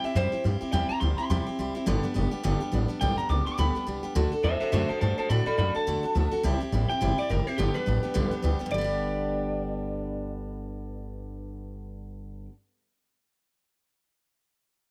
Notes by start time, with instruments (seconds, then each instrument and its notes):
0.04 steel-string acoustic guitar C4 E4 G4, clean electric guitar E5, muted upright bass stroke
0.15 upright bass F#2, steel-string acoustic guitar C3 G3 C4 E4 G4, clean electric guitar C5
0.32 steel-string acoustic guitar C4 E4 G4, muted upright bass stroke
0.44 upright bass G2, steel-string acoustic guitar G3 C4 E4 G4
0.61 steel-string acoustic guitar C4 E4 G4, muted upright bass stroke
0.72 upright bass E2, steel-string acoustic guitar C3 G3 C4 E4 G4, clean electric guitar G5
0.89 steel-string acoustic guitar C4 E4 G4, clean electric guitar A#5, muted upright bass stroke
1.00 upright bass D2, steel-string acoustic guitar G3 C4 E4 G4, clean electric guitar C6
1.18 steel-string acoustic guitar C4 E4 G4, clean electric guitar C6, muted upright bass stroke
1.30 upright bass E2, steel-string acoustic guitar C3 G3 C4 E4 G4, clean electric guitar C6
1.46 steel-string acoustic guitar C4 E4 G4, muted upright bass stroke
1.59 upright bass C2, steel-string acoustic guitar G3 C4 E4 G4
1.75 steel-string acoustic guitar C4 E4 G4, muted upright bass stroke
1.86 upright bass G1, steel-string acoustic guitar G2 D3 G3 B3 D4 G4
2.03 steel-string acoustic guitar G3 B3 D4 G4
2.14 upright bass F#1, steel-string acoustic guitar G3 B3 D4 G4
2.31 steel-string acoustic guitar G3 B3 D4 G4, muted upright bass stroke
2.43 upright bass G1, steel-string acoustic guitar G2 D3 G3 B3 D4 G4
2.60 steel-string acoustic guitar G3 B3 D4 G4
2.72 upright bass A1, steel-string acoustic guitar G3 B3 D4 G4
2.88 steel-string acoustic guitar G3 B3 D4 G4, muted upright bass stroke
3.01 upright bass B1, steel-string acoustic guitar G2 D3 G3 B3 D4 G4, clean electric guitar G5
3.18 steel-string acoustic guitar G3 B3 D4 G4, clean electric guitar A#5, muted upright bass stroke
3.29 upright bass C#2, steel-string acoustic guitar G3 B3 D4 G4, clean electric guitar D6
3.46 steel-string acoustic guitar G3 B3 D4 G4, clean electric guitar D6, muted upright bass stroke
3.58 upright bass D2, steel-string acoustic guitar G2 D3 G3 B3 D4 G4, clean electric guitar B5
3.75 steel-string acoustic guitar G3 B3 D4 G4
3.87 upright bass C2, steel-string acoustic guitar G3 B3 D4 G4
4.03 steel-string acoustic guitar G3 B3 D4 G4
4.15 upright bass D2, steel-string acoustic guitar D3 A3 D4 F#4 A4
4.32 steel-string acoustic guitar D4 F#4 A4, muted upright bass stroke
4.43 upright bass E2, steel-string acoustic guitar A3 D4 F#4 A4, clean electric guitar C5 E5
4.60 steel-string acoustic guitar D4 F#4 A4, clean electric guitar C5 E5, muted upright bass stroke
4.72 upright bass F#2, steel-string acoustic guitar D3 A3 D4 F#4 A4, clean electric guitar C5 E5
4.88 steel-string acoustic guitar D4 F#4 A4, clean electric guitar C5 A5, muted upright bass stroke
5.01 upright bass G2, steel-string acoustic guitar A3 D4 F#4 A4, clean electric guitar C5 A5
5.18 steel-string acoustic guitar D4 F#4 A4, clean electric guitar C5 A5, muted upright bass stroke
5.29 upright bass A2, steel-string acoustic guitar D3 A3 D4 F#4 A4, clean electric guitar D5 B5
5.46 steel-string acoustic guitar D4 F#4 A4, clean electric guitar D5 B5, muted upright bass stroke
5.57 upright bass F#2, steel-string acoustic guitar A3 D4 F#4 A4, clean electric guitar D5 B5
5.75 steel-string acoustic guitar D4 F#4 A4, clean electric guitar A5, muted upright bass stroke
5.87 upright bass E2, steel-string acoustic guitar D3 A3 D4 F#4 A4
6.03 steel-string acoustic guitar D4 F#4 A4, muted upright bass stroke
6.15 upright bass D2, steel-string acoustic guitar A3 D4 F#4 A4
6.31 steel-string acoustic guitar D4 F#4 A4
6.43 upright bass C2, steel-string acoustic guitar C3 G3 C4 E4 G4
6.60 steel-string acoustic guitar C4 E4 G4, muted upright bass stroke
6.72 upright bass A1, steel-string acoustic guitar G3 C4 E4 G4
6.89 steel-string acoustic guitar C4 E4 G4, clean electric guitar G5, muted upright bass stroke
7.01 upright bass G1, steel-string acoustic guitar C3 G3 C4 E4 G4
7.18 steel-string acoustic guitar C4 E4 G4, clean electric guitar D5, muted upright bass stroke
7.29 upright bass F#1, steel-string acoustic guitar G3 C4 E4 G4, clean electric guitar A#4
7.47 steel-string acoustic guitar C4 E4 G4, clean electric guitar C5, muted upright bass stroke
7.58 upright bass G1, steel-string acoustic guitar G2 D3 G3 B3 D4 G4, clean electric guitar G4
7.74 steel-string acoustic guitar G3 B3 D4 G4, clean electric guitar B4
7.86 upright bass A1, steel-string acoustic guitar G3 B3 D4 G4
8.03 steel-string acoustic guitar G3 B3 D4 G4, muted upright bass stroke
8.14 upright bass B1, steel-string acoustic guitar G2 D3 G3 B3 D4 G4
8.31 steel-string acoustic guitar G3 B3 D4 G4, muted upright bass stroke
8.42 upright bass D2, steel-string acoustic guitar G3 B3 D4 G4
8.59 steel-string acoustic guitar G3 B3 D4 G4
8.66 steel-string acoustic guitar G2
8.71 upright bass G1, steel-string acoustic guitar D3 G3, clean electric guitar D5
8.78 steel-string acoustic guitar B3 D4
8.84 steel-string acoustic guitar G4